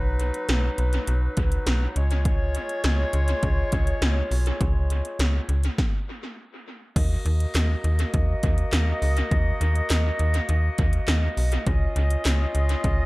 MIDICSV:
0, 0, Header, 1, 4, 480
1, 0, Start_track
1, 0, Tempo, 588235
1, 1839, Time_signature, 4, 2, 24, 8
1, 10655, End_track
2, 0, Start_track
2, 0, Title_t, "Woodwind section"
2, 0, Program_c, 0, 71
2, 0, Note_on_c, 0, 54, 78
2, 0, Note_on_c, 0, 63, 72
2, 0, Note_on_c, 0, 71, 86
2, 1566, Note_off_c, 0, 54, 0
2, 1566, Note_off_c, 0, 63, 0
2, 1566, Note_off_c, 0, 71, 0
2, 1601, Note_on_c, 0, 65, 72
2, 1601, Note_on_c, 0, 73, 90
2, 1602, Note_on_c, 0, 56, 80
2, 4689, Note_off_c, 0, 56, 0
2, 4689, Note_off_c, 0, 65, 0
2, 4689, Note_off_c, 0, 73, 0
2, 5680, Note_on_c, 0, 58, 81
2, 5680, Note_on_c, 0, 66, 72
2, 5680, Note_on_c, 0, 75, 90
2, 9487, Note_off_c, 0, 58, 0
2, 9487, Note_off_c, 0, 66, 0
2, 9487, Note_off_c, 0, 75, 0
2, 9519, Note_on_c, 0, 61, 82
2, 9519, Note_on_c, 0, 65, 77
2, 9519, Note_on_c, 0, 75, 88
2, 10655, Note_off_c, 0, 61, 0
2, 10655, Note_off_c, 0, 65, 0
2, 10655, Note_off_c, 0, 75, 0
2, 10655, End_track
3, 0, Start_track
3, 0, Title_t, "FM bass"
3, 0, Program_c, 1, 39
3, 0, Note_on_c, 1, 35, 100
3, 255, Note_off_c, 1, 35, 0
3, 398, Note_on_c, 1, 35, 107
3, 567, Note_off_c, 1, 35, 0
3, 638, Note_on_c, 1, 35, 100
3, 807, Note_off_c, 1, 35, 0
3, 879, Note_on_c, 1, 35, 102
3, 1047, Note_off_c, 1, 35, 0
3, 1121, Note_on_c, 1, 37, 86
3, 1288, Note_off_c, 1, 37, 0
3, 1359, Note_on_c, 1, 35, 102
3, 1527, Note_off_c, 1, 35, 0
3, 1599, Note_on_c, 1, 37, 99
3, 2103, Note_off_c, 1, 37, 0
3, 2319, Note_on_c, 1, 37, 103
3, 2487, Note_off_c, 1, 37, 0
3, 2557, Note_on_c, 1, 37, 104
3, 2726, Note_off_c, 1, 37, 0
3, 2798, Note_on_c, 1, 37, 104
3, 2966, Note_off_c, 1, 37, 0
3, 3041, Note_on_c, 1, 37, 90
3, 3208, Note_off_c, 1, 37, 0
3, 3277, Note_on_c, 1, 37, 105
3, 3446, Note_off_c, 1, 37, 0
3, 3517, Note_on_c, 1, 35, 98
3, 3686, Note_off_c, 1, 35, 0
3, 3759, Note_on_c, 1, 37, 109
3, 4095, Note_off_c, 1, 37, 0
3, 4237, Note_on_c, 1, 37, 96
3, 4406, Note_off_c, 1, 37, 0
3, 4477, Note_on_c, 1, 37, 91
3, 4646, Note_off_c, 1, 37, 0
3, 5679, Note_on_c, 1, 39, 108
3, 5847, Note_off_c, 1, 39, 0
3, 5920, Note_on_c, 1, 39, 103
3, 6088, Note_off_c, 1, 39, 0
3, 6159, Note_on_c, 1, 39, 103
3, 6327, Note_off_c, 1, 39, 0
3, 6399, Note_on_c, 1, 39, 101
3, 6567, Note_off_c, 1, 39, 0
3, 6641, Note_on_c, 1, 39, 101
3, 6808, Note_off_c, 1, 39, 0
3, 6883, Note_on_c, 1, 39, 96
3, 7050, Note_off_c, 1, 39, 0
3, 7120, Note_on_c, 1, 39, 109
3, 7288, Note_off_c, 1, 39, 0
3, 7360, Note_on_c, 1, 37, 96
3, 7528, Note_off_c, 1, 37, 0
3, 7600, Note_on_c, 1, 39, 99
3, 7768, Note_off_c, 1, 39, 0
3, 7840, Note_on_c, 1, 39, 103
3, 8008, Note_off_c, 1, 39, 0
3, 8081, Note_on_c, 1, 39, 105
3, 8248, Note_off_c, 1, 39, 0
3, 8320, Note_on_c, 1, 39, 100
3, 8488, Note_off_c, 1, 39, 0
3, 8560, Note_on_c, 1, 39, 108
3, 8728, Note_off_c, 1, 39, 0
3, 8802, Note_on_c, 1, 39, 101
3, 8969, Note_off_c, 1, 39, 0
3, 9040, Note_on_c, 1, 39, 111
3, 9208, Note_off_c, 1, 39, 0
3, 9279, Note_on_c, 1, 35, 94
3, 9447, Note_off_c, 1, 35, 0
3, 9520, Note_on_c, 1, 37, 110
3, 9688, Note_off_c, 1, 37, 0
3, 9759, Note_on_c, 1, 37, 106
3, 9927, Note_off_c, 1, 37, 0
3, 9999, Note_on_c, 1, 37, 109
3, 10167, Note_off_c, 1, 37, 0
3, 10239, Note_on_c, 1, 37, 94
3, 10407, Note_off_c, 1, 37, 0
3, 10479, Note_on_c, 1, 37, 106
3, 10647, Note_off_c, 1, 37, 0
3, 10655, End_track
4, 0, Start_track
4, 0, Title_t, "Drums"
4, 159, Note_on_c, 9, 42, 74
4, 241, Note_off_c, 9, 42, 0
4, 279, Note_on_c, 9, 42, 53
4, 360, Note_off_c, 9, 42, 0
4, 397, Note_on_c, 9, 42, 74
4, 401, Note_on_c, 9, 38, 119
4, 478, Note_off_c, 9, 42, 0
4, 482, Note_off_c, 9, 38, 0
4, 638, Note_on_c, 9, 42, 67
4, 719, Note_off_c, 9, 42, 0
4, 757, Note_on_c, 9, 42, 56
4, 838, Note_off_c, 9, 42, 0
4, 877, Note_on_c, 9, 42, 75
4, 958, Note_off_c, 9, 42, 0
4, 1116, Note_on_c, 9, 42, 75
4, 1121, Note_on_c, 9, 36, 101
4, 1198, Note_off_c, 9, 42, 0
4, 1202, Note_off_c, 9, 36, 0
4, 1238, Note_on_c, 9, 42, 59
4, 1319, Note_off_c, 9, 42, 0
4, 1359, Note_on_c, 9, 42, 76
4, 1360, Note_on_c, 9, 38, 110
4, 1441, Note_off_c, 9, 42, 0
4, 1442, Note_off_c, 9, 38, 0
4, 1600, Note_on_c, 9, 42, 74
4, 1681, Note_off_c, 9, 42, 0
4, 1719, Note_on_c, 9, 42, 54
4, 1800, Note_off_c, 9, 42, 0
4, 1838, Note_on_c, 9, 36, 113
4, 1838, Note_on_c, 9, 42, 74
4, 1919, Note_off_c, 9, 42, 0
4, 1920, Note_off_c, 9, 36, 0
4, 2078, Note_on_c, 9, 42, 77
4, 2160, Note_off_c, 9, 42, 0
4, 2197, Note_on_c, 9, 42, 51
4, 2279, Note_off_c, 9, 42, 0
4, 2316, Note_on_c, 9, 42, 72
4, 2319, Note_on_c, 9, 38, 117
4, 2397, Note_off_c, 9, 42, 0
4, 2401, Note_off_c, 9, 38, 0
4, 2556, Note_on_c, 9, 42, 70
4, 2637, Note_off_c, 9, 42, 0
4, 2675, Note_on_c, 9, 42, 55
4, 2756, Note_off_c, 9, 42, 0
4, 2797, Note_on_c, 9, 42, 75
4, 2799, Note_on_c, 9, 36, 88
4, 2878, Note_off_c, 9, 42, 0
4, 2880, Note_off_c, 9, 36, 0
4, 3036, Note_on_c, 9, 42, 77
4, 3041, Note_on_c, 9, 36, 101
4, 3118, Note_off_c, 9, 42, 0
4, 3122, Note_off_c, 9, 36, 0
4, 3158, Note_on_c, 9, 42, 60
4, 3239, Note_off_c, 9, 42, 0
4, 3280, Note_on_c, 9, 42, 74
4, 3281, Note_on_c, 9, 38, 113
4, 3361, Note_off_c, 9, 42, 0
4, 3362, Note_off_c, 9, 38, 0
4, 3521, Note_on_c, 9, 46, 74
4, 3602, Note_off_c, 9, 46, 0
4, 3638, Note_on_c, 9, 42, 55
4, 3720, Note_off_c, 9, 42, 0
4, 3759, Note_on_c, 9, 36, 112
4, 3759, Note_on_c, 9, 42, 72
4, 3840, Note_off_c, 9, 42, 0
4, 3841, Note_off_c, 9, 36, 0
4, 4000, Note_on_c, 9, 42, 76
4, 4082, Note_off_c, 9, 42, 0
4, 4120, Note_on_c, 9, 42, 54
4, 4201, Note_off_c, 9, 42, 0
4, 4239, Note_on_c, 9, 42, 72
4, 4242, Note_on_c, 9, 38, 117
4, 4320, Note_off_c, 9, 42, 0
4, 4324, Note_off_c, 9, 38, 0
4, 4479, Note_on_c, 9, 42, 68
4, 4561, Note_off_c, 9, 42, 0
4, 4598, Note_on_c, 9, 42, 56
4, 4680, Note_off_c, 9, 42, 0
4, 4720, Note_on_c, 9, 36, 109
4, 4720, Note_on_c, 9, 38, 87
4, 4801, Note_off_c, 9, 36, 0
4, 4802, Note_off_c, 9, 38, 0
4, 5680, Note_on_c, 9, 36, 108
4, 5680, Note_on_c, 9, 49, 94
4, 5681, Note_on_c, 9, 42, 73
4, 5761, Note_off_c, 9, 36, 0
4, 5762, Note_off_c, 9, 42, 0
4, 5762, Note_off_c, 9, 49, 0
4, 5921, Note_on_c, 9, 42, 75
4, 6003, Note_off_c, 9, 42, 0
4, 6042, Note_on_c, 9, 42, 53
4, 6123, Note_off_c, 9, 42, 0
4, 6159, Note_on_c, 9, 42, 71
4, 6163, Note_on_c, 9, 38, 123
4, 6163, Note_on_c, 9, 39, 95
4, 6240, Note_off_c, 9, 42, 0
4, 6244, Note_off_c, 9, 38, 0
4, 6244, Note_off_c, 9, 39, 0
4, 6400, Note_on_c, 9, 42, 69
4, 6482, Note_off_c, 9, 42, 0
4, 6519, Note_on_c, 9, 42, 57
4, 6601, Note_off_c, 9, 42, 0
4, 6639, Note_on_c, 9, 42, 74
4, 6641, Note_on_c, 9, 36, 86
4, 6721, Note_off_c, 9, 42, 0
4, 6722, Note_off_c, 9, 36, 0
4, 6879, Note_on_c, 9, 42, 79
4, 6883, Note_on_c, 9, 36, 101
4, 6960, Note_off_c, 9, 42, 0
4, 6964, Note_off_c, 9, 36, 0
4, 6999, Note_on_c, 9, 42, 61
4, 7081, Note_off_c, 9, 42, 0
4, 7121, Note_on_c, 9, 42, 76
4, 7122, Note_on_c, 9, 38, 112
4, 7122, Note_on_c, 9, 39, 93
4, 7202, Note_off_c, 9, 42, 0
4, 7203, Note_off_c, 9, 38, 0
4, 7203, Note_off_c, 9, 39, 0
4, 7361, Note_on_c, 9, 46, 72
4, 7442, Note_off_c, 9, 46, 0
4, 7480, Note_on_c, 9, 42, 55
4, 7561, Note_off_c, 9, 42, 0
4, 7600, Note_on_c, 9, 36, 107
4, 7600, Note_on_c, 9, 42, 74
4, 7682, Note_off_c, 9, 36, 0
4, 7682, Note_off_c, 9, 42, 0
4, 7842, Note_on_c, 9, 42, 75
4, 7923, Note_off_c, 9, 42, 0
4, 7960, Note_on_c, 9, 42, 53
4, 8042, Note_off_c, 9, 42, 0
4, 8077, Note_on_c, 9, 42, 75
4, 8081, Note_on_c, 9, 38, 118
4, 8081, Note_on_c, 9, 39, 95
4, 8159, Note_off_c, 9, 42, 0
4, 8163, Note_off_c, 9, 38, 0
4, 8163, Note_off_c, 9, 39, 0
4, 8318, Note_on_c, 9, 42, 70
4, 8399, Note_off_c, 9, 42, 0
4, 8437, Note_on_c, 9, 42, 55
4, 8519, Note_off_c, 9, 42, 0
4, 8558, Note_on_c, 9, 42, 75
4, 8640, Note_off_c, 9, 42, 0
4, 8798, Note_on_c, 9, 42, 78
4, 8802, Note_on_c, 9, 36, 107
4, 8880, Note_off_c, 9, 42, 0
4, 8884, Note_off_c, 9, 36, 0
4, 8918, Note_on_c, 9, 42, 60
4, 9000, Note_off_c, 9, 42, 0
4, 9040, Note_on_c, 9, 42, 77
4, 9042, Note_on_c, 9, 38, 118
4, 9042, Note_on_c, 9, 39, 94
4, 9122, Note_off_c, 9, 42, 0
4, 9123, Note_off_c, 9, 38, 0
4, 9123, Note_off_c, 9, 39, 0
4, 9281, Note_on_c, 9, 46, 73
4, 9363, Note_off_c, 9, 46, 0
4, 9398, Note_on_c, 9, 42, 54
4, 9480, Note_off_c, 9, 42, 0
4, 9519, Note_on_c, 9, 36, 113
4, 9519, Note_on_c, 9, 42, 73
4, 9600, Note_off_c, 9, 42, 0
4, 9601, Note_off_c, 9, 36, 0
4, 9760, Note_on_c, 9, 42, 76
4, 9841, Note_off_c, 9, 42, 0
4, 9878, Note_on_c, 9, 42, 55
4, 9959, Note_off_c, 9, 42, 0
4, 9996, Note_on_c, 9, 42, 77
4, 10000, Note_on_c, 9, 38, 123
4, 10000, Note_on_c, 9, 39, 94
4, 10078, Note_off_c, 9, 42, 0
4, 10082, Note_off_c, 9, 38, 0
4, 10082, Note_off_c, 9, 39, 0
4, 10238, Note_on_c, 9, 42, 70
4, 10320, Note_off_c, 9, 42, 0
4, 10357, Note_on_c, 9, 42, 55
4, 10439, Note_off_c, 9, 42, 0
4, 10478, Note_on_c, 9, 42, 77
4, 10479, Note_on_c, 9, 36, 90
4, 10559, Note_off_c, 9, 42, 0
4, 10561, Note_off_c, 9, 36, 0
4, 10655, End_track
0, 0, End_of_file